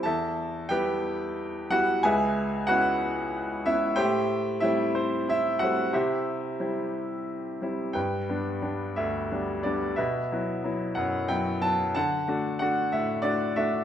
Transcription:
<<
  \new Staff \with { instrumentName = "Grand piano" } { \time 6/8 \key c \lydian \tempo 4. = 61 << { a''4 g''4. fis''8 | gis''4 fis''4. e''8 | g''4 e''8 c''8 e''8 fis''8 | e''2~ e''8 r8 |
\key g \major g''4. e''4 d''8 | e''4. fis''8 g''8 a''8 | a''4 fis''8 e''8 d''8 e''8 | } \\ { <a' e''>4 <g' b'>4. fis'8 | <gis' b' e''>4 <fis' b'>4. e'8 | <g' c'' e''>4 e'8 c'8 e'8 fis'8 | <e' g' c''>2~ <e' g' c''>8 r8 |
b'4. r4. | b'4. r4. | fis''4. r4. | } >> }
  \new Staff \with { instrumentName = "Grand piano" } { \time 6/8 \key c \lydian e,4 <g b e'>4 r8 <g b e'>8 | cis,4 <b cis' e'>4 r8 <b cis'>8 | a,4 <g a c'>4 r8 <g a c'>8 | c4 <g c' e'>4 r8 <g c' e'>8 |
\key g \major g,8 <g b d'>8 <g b d'>8 d,8 <g b d'>8 <g b d'>8 | b,8 <fis b e'>8 <fis b e'>8 fis,8 <fis b e'>8 <fis b e'>8 | d8 <a d' fis'>8 <a d' fis'>8 a,8 <a d' fis'>8 <a d' fis'>8 | }
>>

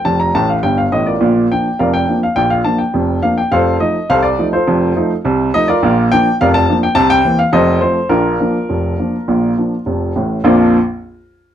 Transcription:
<<
  \new Staff \with { instrumentName = "Upright piano" } { \time 2/4 \key bes \major \tempo 4 = 104 a''16 bes''16 a''16 f''16 g''16 f''16 ees''16 <f' bes' d''>16~ | <f' bes' d''>8 g''8 <bes' d'' f''>16 g''8 f''16 | g''16 f''16 a''16 g''8. f''16 g''16 | <a' c'' f''>8 ees''8 <a' c'' f''>16 d''8 <f' a' c''>16~ |
<f' a' c''>4 r8 ees''16 <f' bes' d''>16~ | <f' bes' d''>8 g''8 <bes' d'' f''>16 a''8 g''16 | a''16 g''8 f''16 <a' c'' ees''>8 c''8 | <d' f' bes'>2~ |
<d' f' bes'>4 r4 | <bes,, f, f bes d' f'>8 r4. | }
  \new Staff \with { instrumentName = "Upright piano" } { \clef bass \time 2/4 \key bes \major <f,, f,>8 <a,, a,>8 <g,, g,>8 <a,, a,>8 | <bes,, bes,>8 <f bes d'>8 <f,, f,>8 <f bes d'>8 | <bes,, bes,>8 <f bes d'>8 <f,, f,>8 <f bes d'>8 | <f,, f,>8 <f a ees'>8 <c, c>8 <f a ees'>8 |
<f,, f,>8 <f a ees'>8 <c, c>8 <f a ees'>8 | <bes,, bes,>8 <f bes d'>8 <f,, f,>8 <f bes d'>8 | <c, c>8 <e bes c'>8 <f,, f,>8 <f a c'>8 | <bes,, bes,>8 <f bes d'>8 <f,, f,>8 <f bes d'>8 |
<bes,, bes,>8 <f bes d'>8 <f,, f,>8 <a,, a,>8 | r2 | }
>>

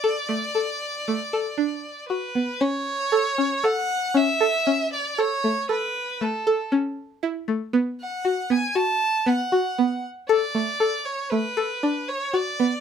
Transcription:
<<
  \new Staff \with { instrumentName = "Violin" } { \time 5/4 \key a \mixolydian \tempo 4 = 117 d''1 b'4 | cis''2 fis''4 e''4. d''8 | cis''4 b'4 a'4 r2 | r8 fis''4 gis''8 a''4 fis''4. r8 |
d''4. cis''8 b'4. cis''8 d''4 | }
  \new Staff \with { instrumentName = "Synth pluck" } { \time 5/4 \key a \mixolydian a'8 a8 a'4 a8 a'8 d'4 fis'8 b8 | cis'4 a'8 cis'8 a'4 cis'8 a'8 cis'4 | a'8 a8 a'4 a8 a'8 cis'4 e'8 a8 | b4 fis'8 b8 fis'4 b8 fis'8 b4 |
a'8 a8 a'4 a8 a'8 d'4 fis'8 b8 | }
>>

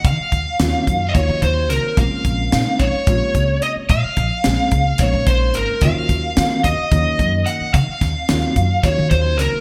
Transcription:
<<
  \new Staff \with { instrumentName = "Lead electric guitar" } { \time 7/8 \key ees \dorian \tempo 4 = 109 f''4.~ f''16. ees''32 des''8 c''8 bes'8 | f''4. des''4. ees''8 | f''2 des''8 c''8 bes'8 | f''4. ees''4. ges''8 |
f''2 des''8 c''8 bes'8 | }
  \new Staff \with { instrumentName = "Grand piano" } { \time 7/8 \key ees \dorian r4 <ees ges bes des' f'>8 r8 <ees ges bes des' f'>4. | <des aes bes c' f'>4 <des aes bes c' ees'>8 r8 <c des aes bes f'>4. | r4 <des aes bes c' aes'>8 r8 <des aes bes c' ees'>4. | <ees ges bes des' f'>4 <ees ges bes des' f'>8 r8 <ees ges bes des' ees'>4. |
r4 <ees ges bes des' f'>8 r8 <ees ges bes des' f'>4. | }
  \new Staff \with { instrumentName = "Upright bass" } { \clef bass \time 7/8 \key ees \dorian ees16 r16 ees,16 r16 ees,16 r16 ges,8 ees,16 ees16 ees,8 des,16 r16 | bes,,16 r16 bes,,8 bes,16 r16 bes,,16 r16 bes,,16 r16 des,8 r8 | bes,16 r16 bes,,16 r16 bes,,16 r16 des,8 bes,,16 bes,16 bes,,8 aes,,16 r16 | ees,16 r16 ees,8 ees16 r16 ees,16 r16 ees,16 r16 ges,8 r8 |
ees16 r16 ees,16 r16 ees,16 r16 ges,8 ees,16 ees16 ees,8 des,16 r16 | }
  \new DrumStaff \with { instrumentName = "Drums" } \drummode { \time 7/8 <hh bd>8 <hh bd>8 <hh sn>8 <hh bd>8 <hh bd>8 <hh bd>8 <hh sn>8 | <hh bd>8 <hh bd>8 <hh sn>8 <hh bd>8 <hh bd>8 <hh bd>8 hh8 | <hh bd>8 <hh bd>8 <hh sn>8 <hh bd>8 <hh bd>8 <hh bd>8 hh8 | <hh bd>8 <hh bd>8 <hh sn>8 <hh bd>8 <hh bd>8 <hh bd>8 hh8 |
<hh bd>8 <hh bd sn>8 <hh sn>8 <hh bd>8 <hh bd>8 <hh bd>8 <hh sn>8 | }
>>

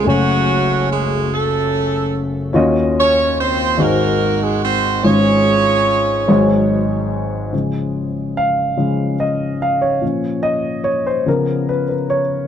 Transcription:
<<
  \new Staff \with { instrumentName = "Horn section" } { \time 6/8 \key des \major \tempo 4. = 48 << { <ges ges'>4 <aes aes'>8 <a a'>4 r8 | r8 <des' des''>8 <c' c''>8 <bes bes'>8. <aes aes'>16 <c' c''>8 | <des' des''>2 r4 | r2. |
r2. | } \\ { <a des'>4. des'4. | r4. <ees' ges'>4. | <f' aes'>2 r4 | r2. |
r2. | } >> }
  \new Staff \with { instrumentName = "Grand piano" } { \time 6/8 \key des \major <a ges' des'' aes''>2. | <des' f' ges' ees''>4. <aes ees' ges' c''>4. | <aes des' f' des''>4. <ges aes ees' des''>4. | r4 f''4 ees''8 f''16 des''16~ |
des''8 ees''8 des''16 c''16 bes'8 ces''16 ces''16 des''8 | }
  \new Staff \with { instrumentName = "Grand piano" } { \clef bass \time 6/8 \key des \major <ges,, ges,>2. | <ees, ees>4. <aes,, aes,>4. | <aes,, aes,>4. <aes,, aes,>4. | <des f aes>4. <des f aes>8 r4 |
<bes, f des'>4. <des f ces'>8 r4 | }
>>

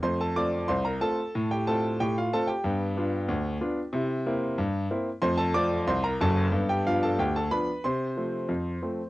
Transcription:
<<
  \new Staff \with { instrumentName = "Grand piano" } { \time 2/4 \key f \major \tempo 4 = 92 <c'' c'''>16 <a' a''>16 <d'' d'''>8 <c'' c'''>16 <bes' bes''>16 <a' a''>8~ | <a' a''>16 <g' g''>16 <a' a''>8 <g' g''>16 <f' f''>16 <a' a''>16 <g' g''>16~ | <g' g''>2~ | <g' g''>4. r8 |
<c'' c'''>16 <a' a''>16 <d'' d'''>8 <c'' c'''>16 <bes' bes''>16 <a' a''>8~ | <a' a''>16 <g' g''>16 <f' f''>16 <a' a''>16 <g' g''>16 <a' a''>16 <b' b''>8 | <c'' c'''>2 | }
  \new Staff \with { instrumentName = "Grand piano" } { \time 2/4 \key f \major <f, a>8 <a c' f'>8 c,8 <a c' f'>8 | a,8 <a c' f'>8 a,8 <a c' f'>8 | <g, b>8 <b d' f'>8 d,8 <b d' f'>8 | <c e'>8 <bes c' e'>8 g,8 <bes c' e'>8 |
<f, a>8 <a c' f'>8 c,8 <ges,, ges,>8 | <g, b>8 <f b d'>8 d,8 <f b d'>8 | c8 <f a c'>8 f,8 <f a c'>8 | }
>>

